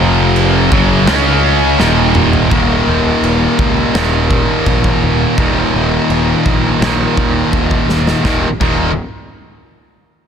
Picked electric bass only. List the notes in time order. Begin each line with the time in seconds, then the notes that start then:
Already playing: F1
0.72 F#1
1.08 C#2
1.80 D#1
2.51 D#1
2.87 D#1
3.22 D#1
3.59 C#2
3.94 D#1
4.67 A#1
5.01 D#1
5.38 D#1
5.74 D#1
6.09 D#1
6.46 A#1
6.81 A#1
7.17 D#2
7.53 D#1
7.89 D#1
8.25 D#1
8.61 D#1